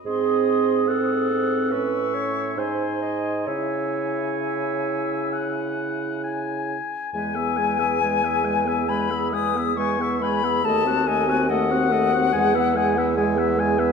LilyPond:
<<
  \new Staff \with { instrumentName = "Flute" } { \time 4/4 \key cis \minor \tempo 4 = 69 bis''8 bis''8 dis'''4 cis'''4 bis''4 | gis''2.~ gis''8 r8 | \key e \major gis''2 b''8 dis'''8 cis'''8 b''8 | a''8 gis''8 fis''2~ fis''8 r8 | }
  \new Staff \with { instrumentName = "Oboe" } { \time 4/4 \key cis \minor dis''4 fis''4 e''4 gis''4 | e''4 e''4 fis''4 gis''4 | \key e \major gis''16 e''16 gis''16 e''16 gis''16 e''16 gis''16 e''16 gis''16 e''16 gis''16 e''16 gis''16 e''16 gis''16 e''16 | dis''16 fis''16 dis''16 fis''16 dis''16 fis''16 dis''16 fis''16 gis''16 e''16 gis''16 e''16 gis''16 e''16 gis''16 e''16 | }
  \new Staff \with { instrumentName = "Clarinet" } { \time 4/4 \key cis \minor gis'4 a'4 b'8 cis''8 bis'8 dis''8 | cis''2. r4 | \key e \major b'16 gis'16 b'16 gis'16 b'16 gis'16 b'16 gis'16 b'16 gis'16 b'16 gis'16 b'16 gis'16 b'16 gis'16 | a'16 fis'16 a'16 fis'16 a'16 fis'16 a'16 fis'16 gis'16 b'16 gis'16 b'16 gis'16 b'16 gis'16 b'16 | }
  \new Staff \with { instrumentName = "French horn" } { \time 4/4 \key cis \minor bis4 bis8 bis8 cis'4 dis'4 | e'2.~ e'8. r16 | \key e \major gis16 b16 gis16 b16 gis16 b16 gis16 b16 gis16 b16 gis16 b16 gis16 b16 gis16 b16 | a16 bis16 a16 bis16 a16 bis16 a16 bis16 gis16 b16 gis16 b16 gis16 b16 gis16 b16 | }
  \new Staff \with { instrumentName = "Bassoon" } { \clef bass \time 4/4 \key cis \minor gis,2 a,4 gis,4 | cis2.~ cis8 r8 | \key e \major e,1 | dis,2 e,2 | }
>>